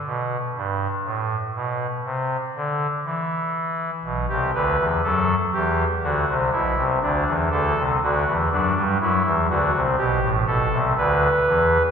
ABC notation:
X:1
M:4/4
L:1/16
Q:1/4=60
K:Ddor
V:1 name="Pipe organ"
B,,2 G,,2 A,,2 B,,2 C,2 D,2 E,4 | z G B2 A2 G2 ^F2 E2 D2 A2 | ^F2 D2 E2 F2 G2 A2 B4 |]
V:2 name="Pipe organ" clef=bass
z16 | [B,,,B,,] [C,,C,] [D,,D,] [E,,E,] [^F,,^F,]2 [E,,E,]2 [D,,D,] [C,,C,] [B,,,B,,] [C,,C,] [D,,D,] [E,,E,] [D,,D,] [C,,C,] | [D,,D,] [E,,E,] [^F,,^F,] [G,,G,] [F,,F,] [E,,E,] [D,,D,] [C,,C,] [B,,,B,,] [A,,,A,,] [B,,,B,,] [C,,C,] [D,,D,]2 [E,,E,]2 |]